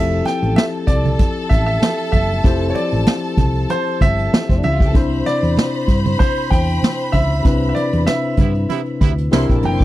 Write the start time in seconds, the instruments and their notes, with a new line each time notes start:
Already playing: fingered electric bass F1, tine electric piano F3 C4 E4 G4 A4, string section A4 A5, grand piano E5
0.25 grand piano G5, snare, closed hi-hat, muted conga
0.42 fingered electric bass A1, closed hi-hat
0.56 grand piano E5, snare, high conga
0.73 closed hi-hat
0.87 fingered electric bass C2, grand piano D5, kick, closed hi-hat
1.05 closed hi-hat, low conga
1.19 kick, closed hi-hat, muted conga
1.49 fingered electric bass A1, grand piano E5, kick, closed hi-hat, muted conga
1.66 grand piano E5, closed hi-hat
1.82 snare, high conga
1.99 closed hi-hat
2.12 fingered electric bass F#1, grand piano E5, kick, closed hi-hat, high conga
2.30 closed hi-hat
2.43 fingered electric bass F1, tine electric piano F3 C4 E4 G4 C5, kick, closed hi-hat, muted conga
2.62 closed hi-hat
2.70 grand piano C#5
2.75 grand piano D5, closed hi-hat, muted conga
2.93 fingered electric bass A1, closed hi-hat
3.07 snare, high conga
3.23 closed hi-hat
3.37 fingered electric bass C2, kick, closed hi-hat, low conga
3.55 closed hi-hat
3.70 grand piano C5, closed hi-hat, muted conga
3.86 closed hi-hat
4.01 fingered electric bass G1, grand piano E5, kick, closed hi-hat, muted conga, low conga
4.19 closed hi-hat
4.33 snare, high conga
4.49 fingered electric bass F1, string section C4 C5, kick, closed hi-hat
4.56 string section D4 D5
4.63 fingered electric bass C#2, string section E4 E5, grand piano E5, closed hi-hat, high conga
4.72 string section F4 F5
4.80 string section G4 G5, kick, closed hi-hat
4.87 string section A4 A5
4.92 fingered electric bass C2, tine electric piano C3 C4 D4 E4 C5, string section C5 B5, kick, closed hi-hat, muted conga
5.13 closed hi-hat
5.26 grand piano D5, snare, closed hi-hat, muted conga
5.43 fingered electric bass E2, closed hi-hat
5.57 snare, high conga
5.74 closed hi-hat
5.88 fingered electric bass G2, kick, closed hi-hat
6.06 closed hi-hat, low conga
6.19 grand piano C5, kick, closed hi-hat, muted conga
6.50 fingered electric bass E2, grand piano G5, kick, closed hi-hat, muted conga
6.69 closed hi-hat
6.83 snare, high conga
7.00 closed hi-hat
7.12 fingered electric bass C#2, grand piano E5, kick, open hi-hat, high conga
7.31 closed hi-hat
7.42 fingered electric bass C2, tine electric piano C3 C4 D4 E4 B4, kick, closed hi-hat, muted conga
7.62 closed hi-hat
7.69 grand piano E5
7.75 grand piano D5, closed hi-hat, muted conga
7.92 fingered electric bass E2, closed hi-hat
8.06 grand piano E5, snare, high conga
8.37 fingered electric bass G2, horn section C3 B3 E4, kick, closed hi-hat, low conga
8.54 closed hi-hat
8.69 horn section C3 B3 E4, closed hi-hat, muted conga
8.86 closed hi-hat
9.01 fingered electric bass D2, horn section C3 B3 E4, kick, closed hi-hat, muted conga, low conga
9.18 closed hi-hat
9.32 fingered electric bass C2, tine electric piano C3 C4 D4 E4 A#4, horn section C3 A#3 E4, string section C5 C6, snare, high conga
9.49 fingered electric bass A#1, string section G4 G5, kick, closed hi-hat
9.57 string section A4 A5
9.62 fingered electric bass F#1, string section A#4 A#5, grand piano G5, closed hi-hat, high conga
9.71 string section C5 C6
9.80 string section D5 D6, kick, closed hi-hat